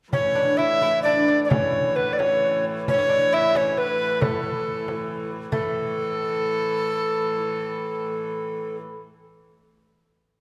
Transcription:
0.12 5.51 A2 medium
0.12 5.52 E3 medium
0.12 0.37 C#4 medium
0.12 0.59 C#5 medium
0.12 frame drum medium
0.35 0.58 D4 medium
0.57 0.81 E4 medium
0.57 1.02 E5 loud
0.82 1.05 E4 medium
0.82 frame drum medium
1.03 1.27 D4 medium
1.03 1.40 D5 medium
1.28 1.52 D4 medium
1.44 1.50 D5 medium
1.49 1.96 C#4 medium
1.49 1.97 C#5 medium
1.49 frame drum medium
1.96 2.19 B3 medium
1.96 2.14 B4 medium
2.13 2.20 D5 medium
2.18 2.62 C#4 medium
2.18 2.65 C#5 medium
2.18 frame drum medium
2.88 2.93 C#4 medium
2.88 3.35 C#5 loud
2.88 frame drum medium
2.94 2.97 C#4 medium
2.99 3.11 C#4 medium
3.09 3.31 D4 medium
3.33 3.56 E4 medium
3.33 3.58 E5 loud
3.55 3.77 C#4 medium
3.55 3.80 C#5 medium
3.55 frame drum medium
3.77 4.19 B3 medium
3.77 4.22 B4 medium
4.21 5.27 A3 medium
4.21 5.31 A4 medium
4.21 frame drum medium
4.88 frame drum medium
5.51 8.80 A2 medium
5.51 8.80 E3 medium
5.51 9.07 A3 medium
5.51 8.76 A4 medium
5.51 frame drum medium

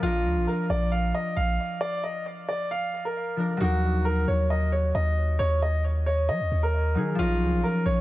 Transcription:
0.00 0.26 A#1 loud
0.00 3.35 F3 medium
0.00 3.34 D4 medium
0.00 0.45 F4 loud
0.06 3.36 A#4 medium
0.25 0.37 D2 loud
0.36 0.47 A#1 loud
0.47 0.67 A#4 medium
0.70 1.12 A#1 loud
0.70 0.90 D5 medium
0.92 1.12 F5 medium
1.14 1.35 D#5 medium
1.36 1.58 A#1 loud
1.36 1.79 F5 medium
1.81 2.01 D5 loud
2.04 2.24 D#5 medium
2.48 2.69 D5 medium
2.71 3.03 F5 medium
3.05 3.57 A#4 medium
3.36 3.65 F3 soft
3.36 3.61 D4 soft
3.36 3.61 A#4 medium
3.57 4.25 D#2 loud
3.57 6.93 F#3 medium
3.57 6.92 D#4 medium
3.57 4.03 F#4 loud
3.64 6.94 A#4 medium
4.05 4.25 A#4 medium
4.28 4.92 D#2 loud
4.28 4.48 C#5 medium
4.50 4.70 D#5 medium
4.72 4.92 C#5 medium
4.95 5.38 D#2 loud
4.95 5.37 D#5 medium
5.39 6.31 D#2 loud
5.39 5.59 C#5 loud
5.62 5.82 D#5 medium
6.06 6.27 C#5 medium
6.29 6.42 F#3 loud
6.29 6.60 D#5 medium
6.40 6.51 D#2 medium
6.51 6.98 D#2 loud
6.63 7.15 A#4 medium
6.95 7.18 D#3 medium
6.95 7.24 F#3 medium
6.95 7.19 D#4 soft
6.95 7.20 G#4 medium
7.15 7.43 A#1 loud
7.15 8.01 F3 medium
7.15 8.01 C#4 medium
7.15 7.61 F4 loud
7.22 8.01 A#4 medium
7.41 7.54 C#2 loud
7.52 7.63 A#1 loud
7.64 7.84 A#4 medium
7.86 8.01 A#1 loud
7.86 8.01 C#5 medium

